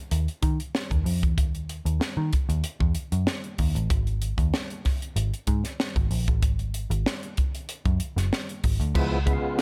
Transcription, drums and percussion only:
0.11 closed hi-hat medium
0.28 closed hi-hat soft
0.42 kick medium
0.42 closed hi-hat medium
0.60 closed hi-hat medium
0.75 snare medium
0.91 kick medium
0.91 closed hi-hat soft
1.06 open hi-hat medium
1.23 kick medium
1.23 closed hi-hat soft
1.38 kick loud
1.38 closed hi-hat medium
1.55 closed hi-hat soft
1.69 closed hi-hat medium
1.86 closed hi-hat soft
2.01 snare loud
2.33 kick medium
2.33 closed hi-hat medium
2.50 closed hi-hat medium
2.64 closed hi-hat medium
2.80 kick medium
2.95 closed hi-hat medium
3.12 closed hi-hat medium
3.27 snare loud
3.44 closed hi-hat soft
3.58 kick medium
3.58 open hi-hat medium
3.76 closed hi-hat soft
3.90 kick loud
3.90 closed hi-hat medium
4.07 closed hi-hat soft
4.22 closed hi-hat medium
4.38 kick medium
4.38 closed hi-hat medium
4.54 snare loud
4.70 closed hi-hat soft
4.85 kick medium
4.85 snare soft
4.85 open hi-hat soft
5.02 closed hi-hat medium
5.16 closed hi-hat loud
5.34 closed hi-hat soft
5.47 kick medium
5.47 closed hi-hat medium
5.64 snare soft
5.64 closed hi-hat medium
5.80 snare loud
5.96 kick medium
5.96 closed hi-hat soft
6.11 open hi-hat medium
6.28 kick medium
6.28 closed hi-hat soft
6.43 kick loud
6.43 closed hi-hat loud
6.59 closed hi-hat soft
6.74 closed hi-hat medium
6.91 closed hi-hat medium
7.06 snare loud
7.23 closed hi-hat soft
7.37 kick medium
7.37 closed hi-hat medium
7.55 closed hi-hat medium
7.69 closed hi-hat medium
7.85 kick medium
7.85 closed hi-hat soft
8.00 closed hi-hat medium
8.17 snare soft
8.17 closed hi-hat medium
8.33 snare medium
8.49 closed hi-hat soft
8.64 kick medium
8.64 open hi-hat medium
8.81 closed hi-hat medium
8.95 kick loud
8.95 crash loud
9.27 kick loud
9.27 closed hi-hat medium
9.59 snare loud

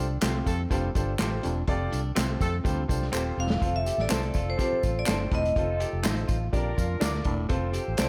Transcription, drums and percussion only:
0.21 snare loud
0.21 clap loud
0.21 closed hi-hat medium
0.21 tambourine medium
0.47 kick medium
0.47 closed hi-hat medium
0.47 tambourine soft
0.71 kick medium
0.71 closed hi-hat medium
0.71 tambourine soft
0.95 kick medium
0.95 closed hi-hat medium
0.95 tambourine medium
1.19 snare loud
1.19 clap medium
1.19 closed hi-hat medium
1.19 tambourine medium
1.43 closed hi-hat medium
1.43 tambourine soft
1.68 kick medium
1.68 closed hi-hat medium
1.93 closed hi-hat medium
1.93 tambourine medium
2.16 snare loud
2.16 clap medium
2.16 closed hi-hat medium
2.16 tambourine medium
2.41 kick medium
2.41 closed hi-hat medium
2.41 tambourine medium
2.65 kick medium
2.65 closed hi-hat medium
2.65 tambourine soft
2.89 kick medium
2.89 closed hi-hat medium
2.89 tambourine medium
3.02 snare soft
3.14 clap loud
3.14 tambourine medium
3.50 snare medium
3.62 kick loud
3.62 closed hi-hat medium
3.62 tambourine soft
3.86 closed hi-hat medium
3.86 tambourine medium
3.99 snare soft
4.10 snare loud
4.10 clap medium
4.10 closed hi-hat loud
4.10 tambourine medium
4.23 closed hi-hat soft
4.34 kick medium
4.34 closed hi-hat medium
4.34 tambourine soft
4.59 kick medium
4.59 closed hi-hat medium
4.59 tambourine soft
4.83 kick medium
4.83 closed hi-hat medium
4.83 tambourine medium
5.06 snare loud
5.06 clap loud
5.06 closed hi-hat medium
5.06 tambourine medium
5.32 kick medium
5.32 closed hi-hat medium
5.45 closed hi-hat soft
5.56 kick medium
5.56 closed hi-hat medium
5.80 closed hi-hat medium
5.80 tambourine medium
6.04 snare loud
6.04 clap medium
6.04 closed hi-hat loud
6.04 tambourine medium
6.16 closed hi-hat soft
6.28 kick medium
6.28 closed hi-hat medium
6.28 tambourine medium
6.53 kick medium
6.53 closed hi-hat medium
6.53 tambourine soft
6.78 kick medium
6.78 closed hi-hat medium
6.78 tambourine medium
7.02 snare loud
7.02 clap medium
7.02 closed hi-hat medium
7.02 tambourine loud
7.14 snare soft
7.24 kick medium
7.24 closed hi-hat medium
7.49 kick loud
7.49 closed hi-hat medium
7.74 closed hi-hat medium
7.74 tambourine soft
7.97 snare loud
7.97 clap loud
7.97 closed hi-hat medium
7.97 tambourine loud

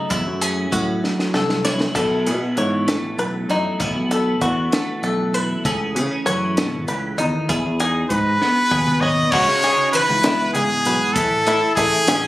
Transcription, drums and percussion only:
0.11 kick medium
0.11 closed hi-hat medium
0.42 closed hi-hat medium
0.72 kick medium
0.72 closed hi-hat medium
1.04 snare soft
1.19 snare soft
1.34 snare medium
1.49 snare medium
1.65 snare medium
1.80 snare medium
1.96 kick loud
1.96 closed hi-hat medium
1.96 crash medium
2.27 closed hi-hat medium
2.57 closed hi-hat medium
2.88 snare loud
2.88 closed hi-hat medium
3.19 closed hi-hat medium
3.50 closed hi-hat soft
3.80 kick medium
3.80 closed hi-hat medium
4.11 closed hi-hat medium
4.41 kick medium
4.41 closed hi-hat soft
4.72 snare loud
4.72 closed hi-hat medium
5.03 closed hi-hat medium
5.34 closed hi-hat soft
5.65 kick loud
5.65 closed hi-hat medium
5.96 closed hi-hat medium
6.27 closed hi-hat medium
6.57 snare loud
6.57 closed hi-hat medium
6.88 closed hi-hat medium
7.18 closed hi-hat soft
7.49 kick medium
7.49 closed hi-hat medium
7.80 closed hi-hat medium
8.10 kick medium
8.10 closed hi-hat medium
8.42 snare soft
8.71 kick medium
8.86 mid tom medium
9.01 floor tom medium
9.32 kick loud
9.32 crash loud
9.62 closed hi-hat medium
9.93 closed hi-hat medium
10.23 snare loud
10.23 closed hi-hat medium
10.55 closed hi-hat medium
10.85 closed hi-hat medium
11.16 kick loud
11.16 closed hi-hat loud
11.47 closed hi-hat medium
11.77 kick medium
11.77 closed hi-hat medium
12.08 snare loud
12.08 closed hi-hat loud

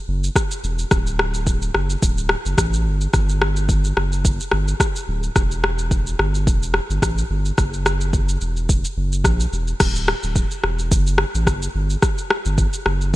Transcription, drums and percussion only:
0.24 shaker medium
0.36 kick medium
0.36 cross-stick medium
0.36 shaker medium
0.51 shaker medium
0.64 shaker soft
0.79 shaker soft
0.91 kick loud
0.91 cross-stick medium
0.91 shaker medium
1.07 shaker soft
1.19 cross-stick loud
1.34 shaker medium
1.47 kick medium
1.47 shaker medium
1.62 shaker medium
1.74 cross-stick medium
1.90 shaker soft
2.02 kick loud
2.02 shaker medium
2.18 shaker medium
2.29 cross-stick loud
2.46 shaker medium
2.58 kick medium
2.58 cross-stick medium
2.58 shaker medium
2.74 shaker medium
3.01 shaker soft
3.13 kick loud
3.13 cross-stick medium
3.13 shaker medium
3.29 shaker soft
3.42 cross-stick loud
3.56 shaker medium
3.69 kick medium
3.69 shaker medium
3.84 shaker medium
3.97 cross-stick medium
4.12 shaker soft
4.25 kick loud
4.25 shaker medium
4.40 shaker medium
4.51 cross-stick medium
4.68 shaker medium
4.80 kick loud
4.80 cross-stick medium
4.80 shaker medium
4.96 shaker medium
5.23 shaker soft
5.36 kick loud
5.36 cross-stick medium
5.36 shaker medium
5.51 shaker soft
5.64 cross-stick loud
5.79 shaker medium
5.91 kick medium
5.91 shaker medium
6.07 shaker medium
6.19 cross-stick medium
6.35 shaker soft
6.47 kick loud
6.47 shaker medium
6.63 shaker medium
6.74 cross-stick medium
6.90 shaker medium
7.02 kick loud
7.02 cross-stick medium
7.02 shaker medium
7.18 shaker medium
7.45 shaker soft
7.58 kick loud
7.58 cross-stick medium
7.58 shaker medium
7.73 shaker soft
7.86 cross-stick loud
7.86 shaker medium
8.01 shaker medium
8.13 kick medium
8.13 shaker medium
8.29 shaker medium
8.41 shaker soft
8.57 shaker soft
8.69 kick loud
8.69 shaker medium
8.85 shaker medium
9.12 shaker medium
9.24 kick loud
9.24 cross-stick medium
9.24 shaker medium
9.40 shaker medium
9.53 shaker soft
9.67 shaker soft
9.80 kick loud
9.80 cross-stick medium
9.80 crash medium
9.80 shaker medium
9.96 shaker soft
10.08 cross-stick loud
10.23 shaker medium
10.36 kick medium
10.36 shaker medium
10.51 shaker medium
10.64 cross-stick medium
10.79 shaker soft
10.92 kick loud
10.92 shaker medium
11.07 shaker medium
11.18 cross-stick loud
11.35 shaker medium
11.47 kick loud
11.47 cross-stick medium
11.47 shaker medium
11.62 shaker medium
11.90 shaker soft
12.02 kick loud
12.02 cross-stick medium
12.02 shaker medium
12.18 shaker medium
12.30 cross-stick loud
12.45 shaker medium
12.58 kick medium
12.58 shaker medium
12.73 shaker medium
12.86 cross-stick medium
13.01 shaker soft

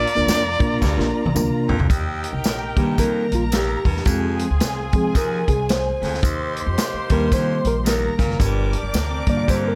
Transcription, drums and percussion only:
0.07 closed hi-hat medium
0.28 snare loud
0.28 closed hi-hat medium
0.28 tambourine loud
0.60 kick loud
0.60 closed hi-hat medium
0.82 kick medium
0.82 snare medium
0.82 tambourine medium
0.99 snare soft
1.26 high tom medium
1.36 mid tom medium
1.36 tambourine medium
1.69 floor tom loud
1.80 floor tom medium
1.90 kick loud
1.90 closed hi-hat medium
1.90 tambourine medium
2.24 closed hi-hat medium
2.44 snare loud
2.44 closed hi-hat medium
2.44 tambourine loud
2.77 kick medium
2.77 closed hi-hat medium
2.98 kick medium
2.98 closed hi-hat medium
2.98 tambourine medium
3.32 closed hi-hat medium
3.52 snare loud
3.52 closed hi-hat medium
3.52 tambourine medium
3.85 kick medium
3.85 open hi-hat medium
3.96 snare soft
4.05 kick loud
4.05 closed hi-hat medium
4.05 tambourine medium
4.39 closed hi-hat medium
4.60 snare loud
4.60 closed hi-hat medium
4.60 tambourine loud
4.93 kick loud
4.93 closed hi-hat medium
5.15 kick medium
5.15 closed hi-hat medium
5.15 tambourine medium
5.48 kick medium
5.48 closed hi-hat medium
5.69 snare loud
5.69 closed hi-hat medium
5.69 tambourine medium
6.03 snare soft
6.03 open hi-hat medium
6.14 snare soft
6.23 kick loud
6.23 closed hi-hat medium
6.23 tambourine medium
6.56 closed hi-hat medium
6.77 snare loud
6.77 closed hi-hat medium
6.77 tambourine loud
7.09 kick medium
7.09 closed hi-hat medium
7.32 kick medium
7.32 closed hi-hat medium
7.32 tambourine medium
7.65 closed hi-hat medium
7.86 snare loud
7.86 closed hi-hat medium
7.86 tambourine loud
8.19 kick medium
8.19 snare soft
8.19 closed hi-hat medium
8.30 snare soft
8.40 kick loud
8.40 closed hi-hat medium
8.40 tambourine medium
8.73 closed hi-hat medium
8.94 snare loud
8.94 closed hi-hat medium
8.94 tambourine loud
9.27 kick medium
9.27 closed hi-hat medium
9.48 kick medium
9.48 closed hi-hat medium
9.48 tambourine medium

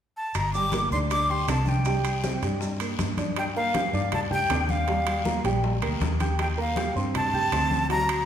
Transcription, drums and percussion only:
0.34 high bongo medium
0.34 high conga soft
0.34 high timbale medium
0.34 long guiro medium
0.34 claves medium
0.34 maracas medium
0.53 high conga soft
0.53 maracas medium
0.72 high bongo medium
0.72 high conga medium
0.72 high timbale medium
0.72 short guiro medium
0.72 maracas medium
0.91 high conga soft
0.91 short guiro medium
0.91 maracas soft
1.09 high bongo medium
1.09 high conga soft
1.09 high timbale medium
1.09 long guiro medium
1.09 claves medium
1.09 maracas medium
1.28 high conga soft
1.48 high bongo medium
1.48 low bongo medium
1.48 high conga soft
1.48 high timbale medium
1.48 low timbale medium
1.48 short guiro medium
1.48 claves medium
1.48 maracas medium
1.66 high conga medium
1.66 short guiro medium
1.66 maracas soft
1.85 high bongo medium
1.85 high conga soft
1.85 high timbale medium
1.85 long guiro medium
1.85 maracas medium
2.04 high bongo soft
2.04 high conga soft
2.04 high timbale medium
2.04 claves medium
2.04 maracas medium
2.24 high bongo medium
2.24 high conga medium
2.24 short guiro medium
2.24 maracas medium
2.42 high bongo soft
2.42 high conga soft
2.42 high timbale medium
2.42 short guiro medium
2.42 maracas soft
2.61 high bongo medium
2.61 high conga soft
2.61 long guiro medium
2.61 maracas medium
2.80 high conga soft
2.80 high timbale medium
2.80 claves medium
2.80 maracas medium
2.99 high bongo medium
2.99 low bongo medium
2.99 high conga medium
2.99 high timbale medium
2.99 short guiro medium
2.99 maracas medium
3.17 high bongo soft
3.17 high conga medium
3.17 high timbale medium
3.17 short guiro medium
3.17 maracas soft
3.36 high bongo medium
3.36 high conga soft
3.36 high timbale medium
3.36 long guiro medium
3.36 claves medium
3.56 high conga soft
3.74 high bongo medium
3.74 high conga medium
3.74 high timbale medium
3.74 short guiro medium
3.94 high conga soft
3.94 short guiro medium
4.12 high bongo medium
4.12 high conga soft
4.12 low conga medium
4.12 high timbale medium
4.12 long guiro medium
4.12 claves medium
4.31 high conga soft
4.31 low conga medium
4.49 high bongo medium
4.49 low bongo medium
4.49 high conga soft
4.49 high timbale medium
4.49 low timbale medium
4.49 short guiro medium
4.49 claves medium
4.69 high conga medium
4.69 short guiro medium
4.88 high bongo medium
4.88 high conga soft
4.88 high timbale medium
4.88 long guiro medium
5.07 high bongo soft
5.07 high conga soft
5.07 high timbale loud
5.07 claves medium
5.25 high bongo medium
5.25 high conga medium
5.25 short guiro medium
5.44 high bongo soft
5.44 high conga soft
5.44 high timbale medium
5.44 short guiro medium
5.63 high bongo medium
5.63 high conga soft
5.63 long guiro medium
5.82 high conga soft
5.82 high timbale medium
5.82 claves medium
6.01 high bongo medium
6.01 low bongo medium
6.01 high conga medium
6.01 high timbale medium
6.01 short guiro medium
6.20 high bongo soft
6.20 high conga medium
6.20 high timbale medium
6.20 short guiro medium
6.39 high bongo medium
6.39 high conga soft
6.39 high timbale medium
6.39 long guiro medium
6.39 claves medium
6.57 high conga soft
6.76 high bongo medium
6.76 high conga medium
6.76 high timbale medium
6.76 short guiro medium
6.95 high conga soft
6.95 short guiro medium
7.14 high bongo medium
7.14 high conga soft
7.14 low conga medium
7.14 high timbale medium
7.14 long guiro medium
7.14 claves medium
7.34 high conga soft
7.34 low conga medium
7.52 high bongo medium
7.52 low bongo medium
7.52 high conga soft
7.52 high timbale medium
7.52 short guiro medium
7.52 claves medium
7.71 high conga medium
7.71 short guiro medium
7.90 high bongo medium
7.90 high conga soft
7.90 high timbale medium
7.90 long guiro medium
8.09 high bongo soft
8.09 high conga soft
8.09 high timbale loud
8.09 claves medium

